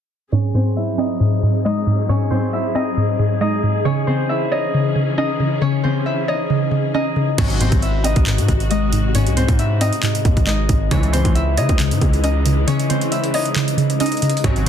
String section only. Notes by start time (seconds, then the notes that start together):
0.32 F#3 C4 G#4
3.85 E3 C#4
7.38 C3 G#3 F#4
10.91 C#3 E3
14.44 C3 F#4